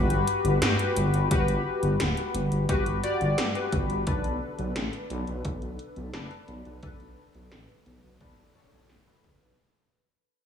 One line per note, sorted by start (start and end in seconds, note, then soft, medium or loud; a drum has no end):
0.00 0.58 F#4 medium
0.00 0.58 G4 medium
0.00 0.58 B4 medium
0.10 0.25 G1 medium
0.10 closed hi-hat soft
0.27 closed hi-hat medium
0.45 0.59 G1 medium
0.45 closed hi-hat soft
0.62 0.76 G2 loud
0.62 1.27 F#4 medium
0.62 1.27 G4 medium
0.62 1.27 B4 medium
0.62 snare loud
0.62 closed hi-hat medium
0.79 closed hi-hat soft
0.96 1.11 G1 medium
0.96 closed hi-hat medium
1.14 1.28 G1 medium
1.14 closed hi-hat soft
1.31 1.46 G1 loud
1.31 2.65 F#4 medium
1.31 2.65 G4 medium
1.31 2.65 B4 medium
1.31 kick loud
1.31 closed hi-hat medium
1.48 1.63 G1 medium
1.48 closed hi-hat soft
1.83 1.97 G1 medium
1.83 closed hi-hat soft
2.00 2.14 D1 loud
2.00 snare loud
2.00 closed hi-hat loud
2.17 closed hi-hat soft
2.35 2.49 G1 medium
2.35 closed hi-hat medium
2.52 2.66 G1 medium
2.52 closed hi-hat soft
2.69 2.83 G1 loud
2.69 2.99 F#4 medium
2.69 2.99 G4 medium
2.69 2.99 B4 loud
2.69 kick loud
2.69 closed hi-hat medium
2.86 3.01 G1 medium
2.86 closed hi-hat soft
3.03 3.51 F#4 medium
3.03 3.51 G4 medium
3.03 3.51 D5 loud
3.03 closed hi-hat medium
3.21 3.35 G1 medium
3.21 closed hi-hat soft
3.38 3.52 G2 loud
3.38 snare loud
3.38 closed hi-hat medium
3.55 4.03 F#4 medium
3.55 4.03 G4 medium
3.55 4.03 B4 medium
3.55 closed hi-hat soft
3.72 3.87 G1 medium
3.72 kick loud
3.72 closed hi-hat medium
3.90 4.04 G1 medium
3.90 closed hi-hat soft
4.07 4.21 B1 loud
4.07 6.10 D4 medium
4.07 6.10 A4 medium
4.07 6.10 B4 medium
4.07 kick loud
4.07 closed hi-hat loud
4.24 4.39 B1 medium
4.24 closed hi-hat soft
4.59 4.73 B1 medium
4.59 closed hi-hat soft
4.76 4.90 A1 loud
4.76 snare loud
4.76 closed hi-hat medium
4.93 closed hi-hat soft
5.10 5.25 B1 medium
5.10 closed hi-hat medium
5.27 5.42 B1 medium
5.27 closed hi-hat soft
5.45 5.59 B1 loud
5.45 kick loud
5.45 closed hi-hat medium
5.62 5.77 B1 medium
5.62 closed hi-hat soft
5.79 closed hi-hat medium
5.96 6.11 B1 medium
5.96 closed hi-hat soft
6.14 6.28 F#1 medium
6.14 6.79 D4 medium
6.14 6.79 A4 medium
6.14 6.79 B4 medium
6.14 snare loud
6.14 closed hi-hat medium
6.31 closed hi-hat soft
6.48 6.63 B1 medium
6.48 closed hi-hat medium
6.65 6.80 B1 medium
6.65 closed hi-hat soft
6.83 6.97 B1 medium
6.83 8.17 D4 medium
6.83 8.17 A4 medium
6.83 8.17 B4 medium
6.83 kick loud
6.83 closed hi-hat medium
7.00 7.15 B1 medium
7.00 closed hi-hat soft
7.34 7.49 B1 medium
7.34 closed hi-hat soft
7.52 7.66 A1 loud
7.52 snare loud
7.52 closed hi-hat medium
7.69 closed hi-hat soft
7.86 8.01 B1 medium
7.86 closed hi-hat medium
8.03 8.18 B1 medium
8.03 closed hi-hat soft
8.20 8.35 B1 loud
8.20 8.51 D4 medium
8.20 8.51 A4 medium
8.20 8.51 B4 medium
8.20 kick loud
8.20 closed hi-hat medium
8.38 8.52 B1 medium
8.38 closed hi-hat soft
8.55 9.03 D4 medium
8.55 9.03 A4 medium
8.55 9.03 C#5 loud
8.55 closed hi-hat medium
8.72 8.87 B1 medium
8.72 closed hi-hat soft
8.89 9.04 B1 loud
8.89 snare loud
8.89 closed hi-hat medium
9.07 9.55 D4 medium
9.07 9.55 A4 medium
9.07 9.55 B4 medium
9.07 closed hi-hat soft
9.24 9.39 F#1 medium
9.24 kick loud
9.24 closed hi-hat medium
9.41 9.56 B1 medium
9.41 closed hi-hat soft